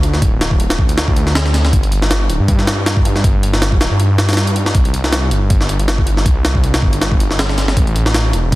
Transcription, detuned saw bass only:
0.00 0.21 D2 medium
0.22 0.77 D1 loud
0.79 0.88 A1 medium
0.89 1.72 D2 medium
1.73 2.28 G1 loud
2.30 2.39 D1 medium
2.40 3.22 G2 medium
3.24 3.79 G1 loud
3.81 3.90 D1 medium
3.91 4.74 G2 medium
4.75 5.30 C2 medium
5.31 5.41 G1 medium
5.42 6.24 G1 medium
6.26 6.81 C2 loud
6.82 6.92 G1 medium
6.93 7.75 G1 medium
7.77 8.32 A1 loud
8.33 8.43 E1 medium
8.44 8.55 E1 medium

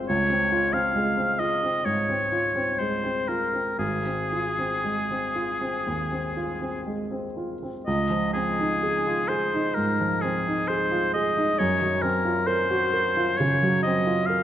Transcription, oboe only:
0.09 0.75 C#5 medium
0.74 1.41 F5 medium
1.39 1.86 D#5 medium
1.85 2.81 C#5 medium
2.79 3.30 C5 soft
3.28 3.78 A#4 soft
3.79 6.82 G#4 medium
7.86 8.31 D#5 medium
8.34 9.30 G#4 medium
9.28 9.77 C5 medium
9.75 10.23 A#4 medium
10.21 10.69 G#4 medium
10.68 11.13 C5 medium
11.14 11.60 D#5 medium
11.58 12.04 C#5 medium
12.02 12.49 A#4 medium
12.47 13.39 C5 medium
13.38 13.82 C#5 medium
13.83 14.28 D#5 medium
14.26 14.43 F5 medium

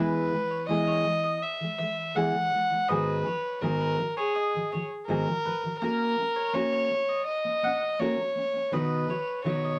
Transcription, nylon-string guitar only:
0.00 0.31 E3 medium
0.00 0.33 G#3 medium
0.00 0.33 B3 medium
0.00 0.33 E4 medium
0.00 0.34 G#4 medium
0.32 0.62 E3 medium
0.32 0.63 G#3 medium
0.68 1.03 E3 medium
0.68 1.06 G#3 medium
0.68 1.06 B3 medium
0.68 1.06 E4 medium
0.68 1.06 G#4 medium
1.04 1.34 E3 soft
1.04 1.36 G#3 medium
1.61 1.78 E3 soft
1.61 1.80 G#3 medium
1.79 2.08 E3 medium
1.79 2.10 G#3 medium
2.15 2.32 E3 medium
2.15 2.34 G#3 medium
2.15 2.34 B3 medium
2.15 2.34 E4 medium
2.15 2.35 G#4 medium
2.33 2.50 E3 soft
2.33 2.53 G#3 medium
2.51 2.69 E3 medium
2.51 2.72 G#3 soft
2.71 2.89 E3 soft
2.71 2.90 G#3 soft
2.89 3.23 G#2 medium
2.89 3.25 D#3 medium
2.89 3.26 F#3 medium
2.89 3.26 B3 medium
2.89 3.26 D#4 medium
2.89 3.27 G#4 medium
3.24 3.54 G#2 soft
3.24 3.55 D#3 soft
3.24 3.56 F#3 medium
3.61 3.97 G#2 medium
3.61 3.99 D#3 medium
3.61 3.99 F#3 medium
3.61 3.99 B3 medium
3.61 3.99 D#4 medium
3.61 3.99 G#4 medium
3.98 4.28 G#2 medium
3.98 4.29 D#3 medium
3.98 4.29 F#3 medium
4.54 4.71 G#2 soft
4.54 4.73 D#3 soft
4.54 4.73 F#3 soft
4.72 5.01 G#2 soft
4.72 5.02 D#3 medium
4.72 5.03 F#3 soft
5.08 5.26 G#2 medium
5.08 5.27 D#3 medium
5.08 5.27 F#3 medium
5.08 5.27 B3 medium
5.08 5.27 D#4 medium
5.08 5.27 G#4 medium
5.27 5.43 G#2 medium
5.27 5.45 D#3 medium
5.27 5.46 F#3 medium
5.44 5.61 G#2 medium
5.44 5.63 D#3 medium
5.44 5.64 F#3 medium
5.62 5.81 G#2 soft
5.62 5.82 D#3 soft
5.62 5.81 F#3 soft
5.82 6.17 A#3 medium
5.82 6.18 C#4 medium
5.82 6.19 F#4 medium
5.82 6.19 A#4 medium
6.18 6.47 A#3 soft
6.18 6.48 C#4 medium
6.53 6.90 A#3 medium
6.53 6.91 C#4 medium
6.53 6.92 F#4 medium
6.53 6.92 A#4 medium
6.91 7.20 A#3 medium
7.45 7.62 A#3 soft
7.45 7.65 C#4 soft
7.63 7.93 A#3 medium
7.63 7.94 C#4 medium
7.99 8.16 A#3 medium
7.99 8.19 C#4 medium
7.99 8.19 F#4 medium
7.99 8.19 A#4 medium
8.17 8.34 A#3 soft
8.17 8.37 C#4 soft
8.35 8.52 A#3 medium
8.35 8.55 C#4 medium
8.53 8.72 A#3 soft
8.53 8.72 C#4 soft
8.71 9.06 B2 medium
8.71 9.07 D#3 medium
8.71 9.09 F#3 medium
8.71 9.10 B3 medium
8.71 9.10 D#4 medium
8.71 9.10 B4 medium
9.07 9.38 B2 soft
9.07 9.39 D#3 soft
9.07 9.39 F#3 medium
9.44 9.79 B2 medium
9.44 9.79 D#3 medium
9.44 9.79 F#3 medium
9.44 9.79 B3 medium
9.44 9.79 D#4 medium
9.44 9.79 B4 medium

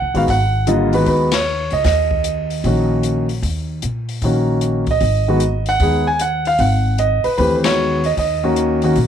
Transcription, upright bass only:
0.02 0.14 C#2 medium
0.14 0.26 A1 medium
0.28 1.03 G#1 medium
1.07 1.68 D#2 medium
1.72 1.84 C#2 medium
1.85 2.60 D#2 medium
2.64 3.39 A#1 medium
3.42 3.79 D#2 medium
3.83 4.19 A#2 medium
4.22 4.97 A#1 medium
5.01 5.76 G#1 medium
5.80 6.55 D#2 medium
6.59 7.20 G#1 medium
7.25 muted upright bass stroke soft
7.38 8.13 D#2 medium
8.17 8.92 D#2 medium
8.96 9.07 A#1 medium

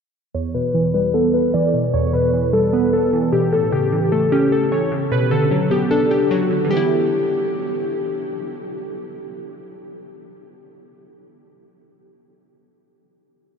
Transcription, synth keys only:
0.35 0.53 C#5 medium
0.54 0.92 B4 medium
0.94 1.13 B4 medium
1.14 1.32 A4 medium
1.34 1.52 B4 medium
1.54 1.72 D5 medium
1.94 2.12 C#5 medium
2.13 2.51 B4 medium
2.53 2.72 A4 medium
2.73 2.92 B4 medium
2.93 3.30 A4 medium
3.33 3.51 G4 medium
3.53 3.71 A4 medium
3.72 4.10 G4 medium
4.12 4.31 A4 medium
4.32 4.50 G4 medium
4.52 4.70 A4 medium
4.72 4.90 C#5 medium
5.12 5.30 B4 medium
5.31 5.69 A4 medium
5.71 5.89 G4 medium
5.91 6.09 A4 medium
6.11 6.29 G4 medium
6.31 6.68 F#4 medium
6.70 7.86 G4 medium

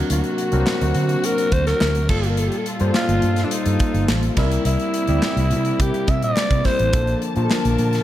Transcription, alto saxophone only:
0.11 1.27 F#4 medium
1.25 1.54 A#4 loud
1.53 1.66 C5 loud
1.67 2.06 A#4 loud
2.09 2.31 A4 medium
2.30 2.40 A#4 medium
2.39 2.50 A4 medium
2.48 2.59 G4 medium
2.58 2.67 A4 medium
2.96 3.46 F4 loud
3.45 3.54 D4 medium
3.52 4.09 D#4 loud
4.38 4.64 E4 medium
4.66 5.83 E4 loud
5.81 6.11 G4 medium
6.10 6.23 E5 loud
6.23 6.67 D5 loud
6.65 7.22 C5 loud
7.44 7.54 A4 medium
7.53 8.03 A#4 medium

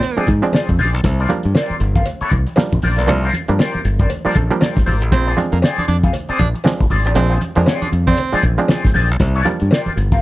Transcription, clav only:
0.17 0.27 F3 medium
0.17 0.27 G#3 medium
0.17 0.27 C4 medium
0.17 0.28 D4 medium
0.42 0.84 F3 medium
0.42 0.84 G#3 medium
0.42 0.85 C4 medium
0.42 0.85 D4 loud
1.29 1.79 F3 medium
1.29 1.79 G3 medium
1.29 1.79 A#3 medium
1.29 1.79 D4 medium
2.56 2.77 F3 medium
2.56 2.77 G3 medium
2.56 2.77 A#3 medium
2.56 2.77 D4 medium
2.97 3.03 A#3 medium
2.97 3.03 D4 medium
3.07 3.28 F3 medium
3.07 3.28 G3 medium
3.07 3.28 A#3 medium
3.07 3.28 D4 medium
3.48 3.83 F3 medium
3.48 3.84 G3 medium
3.48 3.84 A#3 medium
3.48 3.84 D4 medium
4.25 4.35 F3 medium
4.25 4.35 G3 medium
4.25 4.35 A#3 medium
4.25 4.35 D4 medium
4.36 4.59 A4 medium
4.51 4.92 F3 loud
4.51 4.92 G3 medium
4.51 4.93 A#3 medium
4.51 4.93 D4 loud
4.61 4.85 A#4 medium
4.86 5.10 C5 medium
5.37 5.87 F3 medium
5.37 5.87 G#3 medium
5.37 5.87 C4 medium
5.37 5.87 D4 medium
6.64 6.85 F3 medium
6.64 6.85 G#3 medium
6.64 6.85 C4 medium
6.64 6.85 D4 medium
7.05 7.11 C4 medium
7.05 7.11 D4 medium
7.15 7.36 F3 medium
7.15 7.36 G#3 medium
7.15 7.36 C4 medium
7.15 7.36 D4 medium
7.56 7.91 F3 medium
7.56 7.91 G#3 medium
7.56 7.92 C4 medium
7.56 7.92 D4 loud
8.32 8.43 F3 medium
8.32 8.43 G#3 medium
8.32 8.43 C4 medium
8.32 8.43 D4 medium
8.58 9.00 F3 loud
8.58 9.00 G#3 medium
8.58 9.00 C4 medium
8.58 9.01 D4 loud
9.45 9.95 F3 medium
9.45 9.95 G3 medium
9.45 9.95 A#3 medium
9.45 9.96 D4 medium

